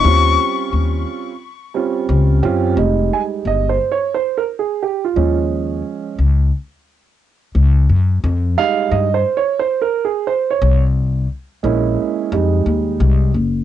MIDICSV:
0, 0, Header, 1, 4, 480
1, 0, Start_track
1, 0, Key_signature, -4, "minor"
1, 0, Tempo, 681818
1, 34, Time_signature, 4, 2, 24, 8
1, 9604, End_track
2, 0, Start_track
2, 0, Title_t, "Flute"
2, 0, Program_c, 0, 73
2, 0, Note_on_c, 0, 85, 122
2, 522, Note_off_c, 0, 85, 0
2, 9604, End_track
3, 0, Start_track
3, 0, Title_t, "Grand piano"
3, 0, Program_c, 1, 0
3, 29, Note_on_c, 1, 55, 73
3, 34, Note_on_c, 1, 60, 68
3, 41, Note_on_c, 1, 61, 72
3, 46, Note_on_c, 1, 65, 85
3, 911, Note_off_c, 1, 55, 0
3, 914, Note_off_c, 1, 60, 0
3, 918, Note_off_c, 1, 61, 0
3, 920, Note_off_c, 1, 65, 0
3, 1227, Note_on_c, 1, 55, 76
3, 1232, Note_on_c, 1, 60, 70
3, 1239, Note_on_c, 1, 61, 67
3, 1242, Note_on_c, 1, 65, 76
3, 1671, Note_off_c, 1, 55, 0
3, 1673, Note_off_c, 1, 60, 0
3, 1677, Note_off_c, 1, 61, 0
3, 1679, Note_off_c, 1, 65, 0
3, 1708, Note_on_c, 1, 67, 86
3, 1711, Note_on_c, 1, 60, 78
3, 1719, Note_on_c, 1, 61, 73
3, 1725, Note_on_c, 1, 65, 96
3, 1931, Note_off_c, 1, 67, 0
3, 1933, Note_off_c, 1, 60, 0
3, 1937, Note_off_c, 1, 61, 0
3, 1940, Note_off_c, 1, 65, 0
3, 1951, Note_on_c, 1, 55, 53
3, 1955, Note_on_c, 1, 56, 49
3, 1960, Note_on_c, 1, 63, 58
3, 2206, Note_on_c, 1, 80, 92
3, 2259, Note_off_c, 1, 80, 0
3, 2446, Note_on_c, 1, 75, 95
3, 2601, Note_on_c, 1, 72, 82
3, 2605, Note_off_c, 1, 75, 0
3, 2645, Note_off_c, 1, 55, 0
3, 2647, Note_off_c, 1, 56, 0
3, 2649, Note_off_c, 1, 63, 0
3, 2758, Note_on_c, 1, 73, 92
3, 2763, Note_off_c, 1, 72, 0
3, 2905, Note_off_c, 1, 73, 0
3, 2918, Note_on_c, 1, 72, 88
3, 3080, Note_on_c, 1, 70, 83
3, 3081, Note_off_c, 1, 72, 0
3, 3116, Note_off_c, 1, 70, 0
3, 3231, Note_on_c, 1, 68, 74
3, 3397, Note_on_c, 1, 67, 76
3, 3398, Note_off_c, 1, 68, 0
3, 3545, Note_off_c, 1, 67, 0
3, 3552, Note_on_c, 1, 65, 70
3, 3630, Note_on_c, 1, 53, 55
3, 3632, Note_on_c, 1, 56, 51
3, 3638, Note_on_c, 1, 61, 57
3, 3777, Note_off_c, 1, 65, 0
3, 4324, Note_off_c, 1, 53, 0
3, 4325, Note_off_c, 1, 56, 0
3, 4328, Note_off_c, 1, 61, 0
3, 6035, Note_on_c, 1, 55, 55
3, 6038, Note_on_c, 1, 56, 52
3, 6038, Note_on_c, 1, 77, 108
3, 6044, Note_on_c, 1, 63, 63
3, 6276, Note_on_c, 1, 75, 94
3, 6284, Note_off_c, 1, 77, 0
3, 6370, Note_off_c, 1, 55, 0
3, 6371, Note_off_c, 1, 56, 0
3, 6375, Note_off_c, 1, 63, 0
3, 6435, Note_on_c, 1, 72, 92
3, 6440, Note_off_c, 1, 75, 0
3, 6596, Note_on_c, 1, 73, 92
3, 6600, Note_off_c, 1, 72, 0
3, 6744, Note_off_c, 1, 73, 0
3, 6754, Note_on_c, 1, 72, 92
3, 6903, Note_off_c, 1, 72, 0
3, 6910, Note_on_c, 1, 70, 86
3, 7061, Note_off_c, 1, 70, 0
3, 7073, Note_on_c, 1, 68, 74
3, 7231, Note_on_c, 1, 72, 85
3, 7239, Note_off_c, 1, 68, 0
3, 7395, Note_on_c, 1, 73, 80
3, 7398, Note_off_c, 1, 72, 0
3, 7618, Note_off_c, 1, 73, 0
3, 8189, Note_on_c, 1, 56, 57
3, 8193, Note_on_c, 1, 58, 54
3, 8194, Note_on_c, 1, 61, 54
3, 8199, Note_on_c, 1, 64, 67
3, 8648, Note_off_c, 1, 56, 0
3, 8650, Note_off_c, 1, 58, 0
3, 8651, Note_off_c, 1, 61, 0
3, 8653, Note_off_c, 1, 64, 0
3, 8675, Note_on_c, 1, 55, 58
3, 8678, Note_on_c, 1, 56, 53
3, 8680, Note_on_c, 1, 63, 68
3, 9367, Note_off_c, 1, 55, 0
3, 9368, Note_off_c, 1, 56, 0
3, 9369, Note_off_c, 1, 63, 0
3, 9604, End_track
4, 0, Start_track
4, 0, Title_t, "Upright bass"
4, 0, Program_c, 2, 32
4, 31, Note_on_c, 2, 39, 98
4, 250, Note_off_c, 2, 39, 0
4, 512, Note_on_c, 2, 39, 81
4, 730, Note_off_c, 2, 39, 0
4, 1470, Note_on_c, 2, 37, 95
4, 1689, Note_off_c, 2, 37, 0
4, 1949, Note_on_c, 2, 29, 96
4, 2169, Note_off_c, 2, 29, 0
4, 2429, Note_on_c, 2, 31, 83
4, 2649, Note_off_c, 2, 31, 0
4, 3634, Note_on_c, 2, 39, 85
4, 4086, Note_off_c, 2, 39, 0
4, 4355, Note_on_c, 2, 37, 84
4, 4572, Note_off_c, 2, 37, 0
4, 5314, Note_on_c, 2, 37, 91
4, 5532, Note_off_c, 2, 37, 0
4, 5557, Note_on_c, 2, 42, 87
4, 5773, Note_off_c, 2, 42, 0
4, 5798, Note_on_c, 2, 41, 105
4, 6014, Note_off_c, 2, 41, 0
4, 6276, Note_on_c, 2, 43, 92
4, 6493, Note_off_c, 2, 43, 0
4, 7474, Note_on_c, 2, 36, 102
4, 7926, Note_off_c, 2, 36, 0
4, 8194, Note_on_c, 2, 34, 89
4, 8411, Note_off_c, 2, 34, 0
4, 8674, Note_on_c, 2, 41, 101
4, 8892, Note_off_c, 2, 41, 0
4, 8913, Note_on_c, 2, 39, 86
4, 9131, Note_off_c, 2, 39, 0
4, 9154, Note_on_c, 2, 36, 98
4, 9372, Note_off_c, 2, 36, 0
4, 9394, Note_on_c, 2, 30, 83
4, 9604, Note_off_c, 2, 30, 0
4, 9604, End_track
0, 0, End_of_file